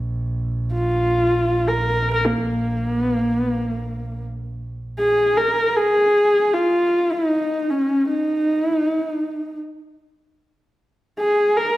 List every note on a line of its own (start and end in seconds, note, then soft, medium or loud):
0.00 5.05 A#1 medium
0.73 1.69 F4 medium
1.68 2.13 A#4 medium
2.14 2.26 A#4 medium
2.25 2.96 A#3 medium
2.96 3.15 B3 medium
3.15 3.35 A#3 medium
3.35 3.55 B3 medium
3.55 4.24 A#3 medium
4.99 5.38 G#4 loud
5.37 5.78 A#4 loud
5.76 6.55 G#4 loud
6.54 7.13 F4 medium
7.11 7.71 D#4 medium
7.70 8.08 C#4 medium
8.08 8.62 D#4 medium
8.62 8.76 E4 medium
8.76 8.92 D#4 medium
8.92 9.06 E4 medium
9.06 9.59 D#4 medium
11.19 11.58 G#4 loud
11.57 11.77 A#4 loud